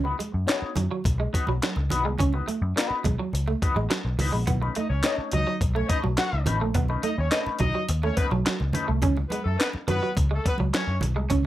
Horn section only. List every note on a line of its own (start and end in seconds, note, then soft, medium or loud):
4.77 4.88 D#4 medium
4.77 4.88 D#5 medium
4.90 5.01 C#4 medium
4.90 5.01 C#5 medium
5.05 5.13 D#4 medium
5.05 5.13 D#5 medium
5.34 5.56 D#4 medium
5.34 5.56 D#5 loud
5.76 5.87 C#4 medium
5.76 5.87 C#5 medium
5.90 5.98 D#4 medium
5.90 5.98 D#5 medium
6.18 6.41 F#4 medium
6.18 6.41 F#5 loud
7.03 7.15 D#4 medium
7.03 7.15 D#5 loud
7.17 7.29 C#4 medium
7.17 7.29 C#5 medium
7.31 7.40 D#4 medium
7.31 7.40 D#5 medium
7.60 7.83 D#4 medium
7.60 7.83 D#5 loud
8.03 8.15 C#4 medium
8.03 8.15 C#5 loud
8.17 8.26 B3 medium
8.17 8.26 B4 loud
9.29 9.42 B3 medium
9.29 9.42 B4 medium
9.44 9.56 A3 medium
9.44 9.56 A4 medium
9.59 9.69 B3 medium
9.59 9.68 B4 medium
9.88 10.11 B3 loud
9.88 10.11 B4 loud
10.33 10.43 A3 medium
10.33 10.44 A4 medium
10.47 10.55 B3 medium
10.47 10.56 B4 loud
10.75 10.97 C#4 medium
10.75 10.97 C#5 loud